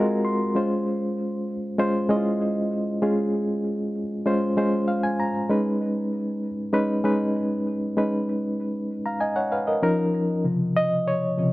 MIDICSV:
0, 0, Header, 1, 2, 480
1, 0, Start_track
1, 0, Key_signature, -5, "major"
1, 0, Tempo, 617920
1, 431, Time_signature, 4, 2, 24, 8
1, 8956, End_track
2, 0, Start_track
2, 0, Title_t, "Reed electric piano"
2, 0, Program_c, 0, 4
2, 0, Note_on_c, 0, 56, 80
2, 0, Note_on_c, 0, 60, 76
2, 0, Note_on_c, 0, 65, 71
2, 0, Note_on_c, 0, 66, 80
2, 0, Note_on_c, 0, 70, 88
2, 0, Note_on_c, 0, 82, 66
2, 77, Control_c, 0, 64, 127
2, 176, Note_off_c, 0, 82, 0
2, 191, Note_on_c, 0, 84, 63
2, 337, Note_off_c, 0, 56, 0
2, 338, Note_off_c, 0, 60, 0
2, 339, Note_off_c, 0, 65, 0
2, 340, Note_off_c, 0, 66, 0
2, 341, Note_off_c, 0, 70, 0
2, 414, Note_off_c, 0, 84, 0
2, 430, Note_on_c, 0, 56, 63
2, 433, Note_on_c, 0, 61, 60
2, 436, Note_on_c, 0, 65, 58
2, 438, Note_on_c, 0, 72, 72
2, 442, Control_c, 0, 64, 0
2, 568, Control_c, 0, 64, 127
2, 1204, Note_off_c, 0, 56, 0
2, 1205, Note_off_c, 0, 61, 0
2, 1207, Note_off_c, 0, 65, 0
2, 1208, Note_off_c, 0, 72, 0
2, 1387, Note_on_c, 0, 56, 75
2, 1389, Note_on_c, 0, 61, 67
2, 1392, Note_on_c, 0, 65, 75
2, 1394, Note_on_c, 0, 72, 85
2, 1581, Note_off_c, 0, 56, 0
2, 1582, Note_off_c, 0, 61, 0
2, 1584, Note_off_c, 0, 65, 0
2, 1585, Note_off_c, 0, 72, 0
2, 1626, Note_on_c, 0, 56, 73
2, 1629, Note_on_c, 0, 61, 63
2, 1631, Note_on_c, 0, 64, 52
2, 1636, Note_on_c, 0, 75, 78
2, 1680, Note_off_c, 0, 64, 0
2, 1683, Note_on_c, 0, 65, 59
2, 2208, Note_off_c, 0, 56, 0
2, 2209, Note_off_c, 0, 61, 0
2, 2212, Note_off_c, 0, 75, 0
2, 2236, Note_off_c, 0, 65, 0
2, 2345, Note_on_c, 0, 56, 67
2, 2348, Note_on_c, 0, 61, 60
2, 2352, Note_on_c, 0, 65, 66
2, 2352, Note_on_c, 0, 68, 75
2, 3121, Note_off_c, 0, 56, 0
2, 3122, Note_off_c, 0, 61, 0
2, 3124, Note_off_c, 0, 65, 0
2, 3124, Note_off_c, 0, 68, 0
2, 3307, Note_on_c, 0, 56, 76
2, 3309, Note_on_c, 0, 61, 71
2, 3313, Note_on_c, 0, 65, 66
2, 3314, Note_on_c, 0, 72, 88
2, 3501, Note_off_c, 0, 56, 0
2, 3502, Note_off_c, 0, 61, 0
2, 3504, Note_off_c, 0, 65, 0
2, 3504, Note_off_c, 0, 72, 0
2, 3550, Note_on_c, 0, 56, 68
2, 3554, Note_on_c, 0, 61, 56
2, 3555, Note_on_c, 0, 65, 55
2, 3556, Note_on_c, 0, 72, 70
2, 3789, Note_on_c, 0, 77, 66
2, 3900, Note_off_c, 0, 77, 0
2, 3910, Note_on_c, 0, 80, 72
2, 4020, Note_off_c, 0, 80, 0
2, 4037, Note_on_c, 0, 82, 65
2, 4129, Note_off_c, 0, 56, 0
2, 4131, Note_off_c, 0, 61, 0
2, 4132, Note_off_c, 0, 65, 0
2, 4132, Note_off_c, 0, 72, 0
2, 4255, Note_off_c, 0, 82, 0
2, 4270, Note_on_c, 0, 56, 71
2, 4274, Note_on_c, 0, 61, 65
2, 4275, Note_on_c, 0, 63, 64
2, 4276, Control_c, 0, 64, 0
2, 4278, Note_on_c, 0, 71, 75
2, 4391, Control_c, 0, 64, 127
2, 5043, Note_off_c, 0, 56, 0
2, 5045, Note_off_c, 0, 61, 0
2, 5046, Note_off_c, 0, 63, 0
2, 5047, Note_off_c, 0, 71, 0
2, 5225, Note_on_c, 0, 56, 74
2, 5230, Note_on_c, 0, 61, 74
2, 5231, Note_on_c, 0, 63, 76
2, 5233, Note_on_c, 0, 71, 89
2, 5420, Note_off_c, 0, 56, 0
2, 5422, Note_off_c, 0, 61, 0
2, 5423, Note_off_c, 0, 63, 0
2, 5424, Note_off_c, 0, 71, 0
2, 5467, Note_on_c, 0, 56, 71
2, 5468, Note_on_c, 0, 61, 61
2, 5472, Note_on_c, 0, 63, 57
2, 5476, Note_on_c, 0, 71, 72
2, 6049, Note_off_c, 0, 56, 0
2, 6049, Note_off_c, 0, 61, 0
2, 6052, Note_off_c, 0, 63, 0
2, 6053, Note_off_c, 0, 71, 0
2, 6191, Note_on_c, 0, 56, 72
2, 6194, Note_on_c, 0, 61, 57
2, 6196, Note_on_c, 0, 63, 56
2, 6198, Note_on_c, 0, 71, 71
2, 6914, Note_off_c, 0, 71, 0
2, 6966, Note_off_c, 0, 56, 0
2, 6967, Note_off_c, 0, 61, 0
2, 6968, Note_off_c, 0, 63, 0
2, 7035, Note_on_c, 0, 82, 55
2, 7040, Note_on_c, 0, 77, 49
2, 7146, Note_off_c, 0, 82, 0
2, 7149, Note_off_c, 0, 77, 0
2, 7150, Note_on_c, 0, 80, 63
2, 7153, Note_on_c, 0, 75, 52
2, 7264, Note_off_c, 0, 80, 0
2, 7265, Note_off_c, 0, 75, 0
2, 7269, Note_on_c, 0, 78, 66
2, 7273, Note_on_c, 0, 73, 52
2, 7384, Note_off_c, 0, 78, 0
2, 7386, Note_off_c, 0, 73, 0
2, 7394, Note_on_c, 0, 77, 58
2, 7398, Note_on_c, 0, 71, 52
2, 7507, Note_off_c, 0, 77, 0
2, 7508, Note_off_c, 0, 71, 0
2, 7514, Note_on_c, 0, 75, 59
2, 7518, Note_on_c, 0, 70, 48
2, 7629, Note_off_c, 0, 70, 0
2, 7632, Note_on_c, 0, 53, 78
2, 7632, Note_on_c, 0, 61, 75
2, 7635, Note_on_c, 0, 63, 76
2, 7638, Note_on_c, 0, 70, 82
2, 7642, Control_c, 0, 64, 0
2, 7741, Note_off_c, 0, 75, 0
2, 7755, Control_c, 0, 64, 127
2, 8019, Note_off_c, 0, 53, 0
2, 8020, Note_off_c, 0, 61, 0
2, 8021, Note_off_c, 0, 63, 0
2, 8022, Note_off_c, 0, 70, 0
2, 8109, Note_on_c, 0, 49, 46
2, 8114, Note_on_c, 0, 53, 42
2, 8119, Note_on_c, 0, 48, 50
2, 8121, Control_c, 0, 64, 0
2, 8242, Control_c, 0, 64, 127
2, 8362, Note_on_c, 0, 75, 105
2, 8581, Note_off_c, 0, 75, 0
2, 8604, Note_on_c, 0, 73, 83
2, 8801, Note_off_c, 0, 49, 0
2, 8803, Note_off_c, 0, 53, 0
2, 8806, Note_off_c, 0, 48, 0
2, 8835, Note_on_c, 0, 49, 49
2, 8837, Note_on_c, 0, 53, 43
2, 8841, Note_on_c, 0, 48, 54
2, 8956, Note_off_c, 0, 48, 0
2, 8956, Note_off_c, 0, 49, 0
2, 8956, Note_off_c, 0, 53, 0
2, 8956, Note_off_c, 0, 73, 0
2, 8956, End_track
0, 0, End_of_file